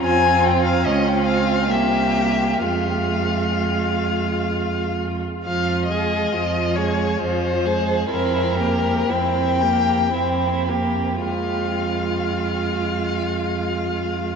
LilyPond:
<<
  \new Staff \with { instrumentName = "Violin" } { \time 3/4 \key f \minor \tempo 4 = 64 aes''8 g''16 f''16 ees''16 g''16 f''8 e''4 | f''2~ f''8 r8 | f''8 ees''4 des''8 c''4 | bes'4 g''4. r8 |
f''2. | }
  \new Staff \with { instrumentName = "Violin" } { \time 3/4 \key f \minor f'4 f'4 g'4 | f'2~ f'8. r16 | f'8 aes'8 f'8 aes'8 f'8 aes'8 | e'8 g'8 e'8 g'8 e'8 g'8 |
f'2. | }
  \new Staff \with { instrumentName = "Viola" } { \time 3/4 \key f \minor c'4 des'8 c'8 bes4 | aes2~ aes8. r16 | f8 aes8 f8 aes8 f8 aes8 | c'8 bes8 c'8 bes8 c'8 bes8 |
aes2. | }
  \new Staff \with { instrumentName = "Cello" } { \clef bass \time 3/4 \key f \minor f,4 des,4 c,4 | f,2~ f,8. r16 | f,4 f,4 f,4 | f,4 f,4 f,4 |
f,2. | }
>>